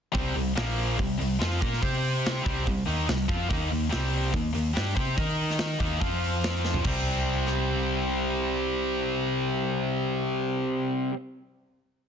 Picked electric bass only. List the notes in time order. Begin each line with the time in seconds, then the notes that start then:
0.15 C2
0.35 C2
0.57 A#1
0.99 C2
1.20 C2
1.42 F2
1.62 A#2
1.82 C3
2.46 C2
2.67 C2
2.87 D#2
3.08 C2
3.29 F2
3.51 D#2
3.72 D#2
3.93 C2
4.34 D#2
4.56 D#2
4.77 G2
4.96 C3
5.18 D#3
5.80 D#2
6.02 F2
6.85 C2